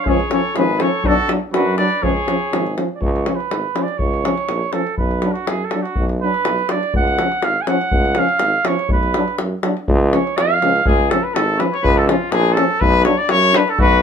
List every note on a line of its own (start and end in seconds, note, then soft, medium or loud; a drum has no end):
0.00 0.10 F5 medium
0.05 0.20 C#2 medium
0.05 0.17 F3 medium
0.05 0.17 C#4 medium
0.05 0.30 G#4 medium
0.05 0.32 C#5 medium
0.05 davul low medium
0.20 davul high soft
0.31 0.42 F3 medium
0.31 0.41 C#4 medium
0.31 0.56 A4 medium
0.31 0.58 C#5 medium
0.31 davul high medium
0.55 0.82 G#1 loud
0.55 0.66 F3 medium
0.55 0.66 C#4 medium
0.55 0.81 G#4 medium
0.55 0.83 B4 loud
0.55 davul high medium
0.79 0.89 F3 medium
0.79 0.90 C#4 medium
0.79 1.07 A4 medium
0.79 1.08 C#5 medium
0.79 davul high medium
1.03 1.18 B1 medium
1.03 1.13 F#3 medium
1.03 1.15 D4 medium
1.03 1.30 F#4 medium
1.03 1.30 A4 loud
1.03 davul low medium
1.18 davul high soft
1.28 1.38 F#3 medium
1.28 1.39 D4 medium
1.28 davul high medium
1.53 1.82 F#2 loud
1.53 1.63 F#3 medium
1.53 1.64 D4 medium
1.53 1.77 F#4 medium
1.53 1.76 B4 medium
1.53 davul high medium
1.77 1.89 F#3 medium
1.77 1.88 D4 medium
1.77 2.05 B4 medium
1.77 2.04 D5 loud
1.77 davul high medium
2.03 2.17 C#2 medium
2.03 2.13 F3 medium
2.03 2.13 C#4 medium
2.03 2.77 G#4 loud
2.03 2.77 C#5 medium
2.03 davul low medium
2.17 davul high soft
2.28 2.38 F3 medium
2.28 2.38 C#4 medium
2.28 davul high medium
2.52 2.79 G#1 medium
2.52 2.63 F3 medium
2.52 2.63 C#4 medium
2.52 davul high medium
2.67 davul high soft
2.77 2.88 F3 medium
2.77 2.87 C#4 medium
2.77 davul high medium
2.95 3.03 D5 medium
3.01 3.29 C#2 loud
3.01 3.37 C#5 medium
3.01 davul low medium
3.16 davul high soft
3.26 3.37 F3 medium
3.26 3.37 C#4 medium
3.26 davul high medium
3.35 3.84 B4 medium
3.40 davul high soft
3.50 3.64 G#1 medium
3.50 davul high medium
3.76 3.86 F3 medium
3.76 3.86 C#4 medium
3.76 davul high medium
3.83 4.00 D5 medium
3.88 davul high soft
3.98 4.27 C#2 loud
3.98 4.75 C#5 medium
3.98 davul low medium
4.14 davul high soft
4.25 4.35 F3 medium
4.25 4.34 C#4 medium
4.25 davul high medium
4.38 davul high soft
4.49 4.63 A#1 loud
4.49 davul high medium
4.73 4.84 F3 medium
4.73 4.83 C#4 medium
4.73 4.97 A4 medium
4.73 davul high medium
4.87 davul high soft
4.98 5.26 B1 medium
4.98 5.34 B4 medium
4.98 davul low medium
5.11 davul high soft
5.22 5.33 F#3 medium
5.22 5.33 D4 medium
5.22 davul high medium
5.33 5.50 F#4 medium
5.33 davul high soft
5.47 5.62 F#2 medium
5.47 5.66 G#4 medium
5.47 davul high medium
5.65 5.84 A4 medium
5.71 5.83 F#3 medium
5.71 5.83 D4 medium
5.71 davul high medium
5.82 6.06 F#4 medium
5.82 davul high soft
5.96 6.24 B1 loud
5.96 davul low medium
6.09 davul high soft
6.22 6.32 F#3 medium
6.22 6.32 D4 medium
6.22 6.72 B4 loud
6.34 davul high soft
6.45 6.59 B1 medium
6.45 davul high medium
6.59 davul high soft
6.69 6.80 F#3 medium
6.69 6.81 D4 medium
6.69 6.95 D5 medium
6.69 davul high medium
6.83 davul high soft
6.94 7.22 C#2 loud
6.94 7.46 F#5 loud
6.94 davul low medium
7.08 davul high soft
7.19 7.29 F3 soft
7.19 7.31 C#4 medium
7.19 davul high medium
7.32 davul high soft
7.42 7.57 G#1 medium
7.42 7.63 F5 loud
7.42 davul high medium
7.62 7.69 G#5 medium
7.67 7.78 F3 medium
7.67 7.79 C#4 medium
7.67 8.20 F#5 loud
7.67 davul high medium
7.81 davul high soft
7.91 8.19 C#2 loud
7.91 davul low medium
8.05 davul high soft
8.15 8.27 F3 medium
8.15 8.28 C#4 medium
8.15 8.68 F5 loud
8.15 davul high medium
8.29 davul high soft
8.39 8.55 G#1 loud
8.39 davul high medium
8.65 8.76 F3 medium
8.65 8.76 C#4 medium
8.65 8.91 C#5 loud
8.65 davul high medium
8.79 davul high soft
8.89 9.16 B1 medium
8.89 9.37 B4 medium
8.89 davul low medium
9.03 davul high soft
9.14 9.25 F#3 medium
9.14 9.25 D4 medium
9.14 davul high medium
9.28 davul high soft
9.38 9.53 F#2 medium
9.38 davul high medium
9.63 9.73 F#3 medium
9.63 9.74 D4 medium
9.63 davul high medium
9.77 davul high soft
9.88 10.15 C#2 loud
9.88 davul low medium
10.12 10.22 F3 medium
10.12 10.23 C#4 medium
10.12 10.39 C#5 loud
10.12 davul high medium
10.27 davul high soft
10.37 10.59 F2 medium
10.37 10.86 F5 loud
10.37 davul high medium
10.52 davul high soft
10.61 10.84 C#2 medium
10.61 10.71 F3 medium
10.61 10.72 C#4 medium
10.61 davul high medium
10.76 davul high soft
10.85 11.12 C#2 loud
10.85 11.11 G#4 loud
10.85 davul low medium
11.10 11.21 F3 medium
11.10 11.21 C#4 medium
11.10 11.24 A4 medium
11.10 davul high medium
11.23 11.35 B4 medium
11.34 11.61 G#1 loud
11.34 11.58 A4 loud
11.34 davul high medium
11.49 davul high soft
11.57 11.69 F3 medium
11.57 11.68 C#4 medium
11.57 11.74 B4 medium
11.57 11.61 C#5 medium
11.57 davul high medium
11.73 11.84 C#5 loud
11.73 davul high soft
11.82 12.10 C#2 loud
11.82 11.99 B4 loud
11.82 davul low medium
11.98 12.09 A4 medium
12.07 12.18 F3 medium
12.07 12.17 C#4 medium
12.07 12.33 F4 medium
12.07 davul high medium
12.31 12.59 A#1 loud
12.31 12.56 G#4 loud
12.31 davul high medium
12.46 davul high soft
12.54 12.67 F3 medium
12.54 12.66 C#4 medium
12.54 12.82 A4 loud
12.54 davul high medium
12.71 davul high soft
12.80 13.08 B1 loud
12.80 13.04 B4 loud
12.80 davul low medium
13.05 13.15 F#3 medium
13.05 13.15 D4 medium
13.05 13.19 C#5 loud
13.05 davul high medium
13.18 13.32 D5 loud
13.29 13.57 F#2 loud
13.29 13.58 C#5 loud
13.29 davul high medium
13.43 davul high soft
13.53 13.63 F#3 medium
13.53 13.63 D4 medium
13.53 13.71 B4 loud
13.53 davul high medium
13.68 13.79 A4 medium
13.68 davul high soft
13.79 14.02 B1 loud
13.79 14.02 F#4 loud
13.79 14.02 B4 loud
13.79 davul low medium
13.92 davul high soft